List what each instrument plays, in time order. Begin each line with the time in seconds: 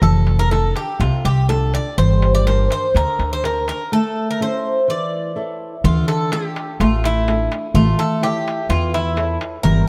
0.01 upright bass F1, nylon-string guitar F3, bouzouki A4, darbuka dum
0.27 darbuka tek
0.39 bouzouki A#4
0.51 nylon-string guitar D4 F4 A4, bouzouki A4, darbuka tek
0.76 bouzouki G4, darbuka tek
0.88 darbuka tek
1.00 upright bass C2, nylon-string guitar C3, bouzouki F4, darbuka tek
1.13 darbuka tek
1.25 upright bass C2, bouzouki G4, darbuka tek
1.38 darbuka tek
1.48 nylon-string guitar D4 F4 A4, bouzouki A4, darbuka tek
1.63 darbuka tek
1.74 bouzouki D5, darbuka tek
1.98 upright bass G1, nylon-string guitar G3, bouzouki C5, darbuka dum
2.22 darbuka tek
2.35 bouzouki D5
2.46 nylon-string guitar D4 G4 A#4, bouzouki C5, darbuka tek
2.71 bouzouki C5, darbuka tek
2.83 darbuka tek
2.95 upright bass D2, nylon-string guitar D3, bouzouki A#4, darbuka tek
3.08 darbuka tek
3.19 upright bass D2, darbuka tek
3.32 bouzouki C5, darbuka tek
3.43 nylon-string guitar D4 G4 A#4, bouzouki A#4, darbuka tek
3.56 darbuka tek
3.68 bouzouki A#4, darbuka tek
3.92 nylon-string guitar A3, bouzouki A4
4.31 bouzouki A#4
4.40 nylon-string guitar C#4 E4 A4, bouzouki C5
4.88 nylon-string guitar E3, bouzouki D5
5.36 nylon-string guitar E4 A4 C#5
5.84 upright bass D2, nylon-string guitar D3, bouzouki F4, darbuka dum
5.96 darbuka tek
6.08 bouzouki A4, darbuka tek
6.32 nylon-string guitar D4 F4 A4, bouzouki G4, darbuka tek
6.56 darbuka tek
6.80 upright bass A1, nylon-string guitar A3, bouzouki F4, darbuka tek
7.04 bouzouki E4, darbuka tek
7.28 nylon-string guitar D4 F4 A4, darbuka tek
7.52 darbuka tek
7.74 upright bass A1, nylon-string guitar A3, bouzouki F4, darbuka dum
7.88 darbuka tek
7.99 bouzouki A4, darbuka tek
8.21 nylon-string guitar E4 A4 C#5, bouzouki G4, darbuka tek
8.48 darbuka tek
8.69 upright bass E2, nylon-string guitar E3, bouzouki F4, darbuka tek
8.94 bouzouki E4, darbuka tek
9.16 nylon-string guitar E4 A4 C#5, darbuka tek
9.41 darbuka tek
9.63 upright bass G1, nylon-string guitar G3, bouzouki A#4, darbuka dum
9.77 darbuka tek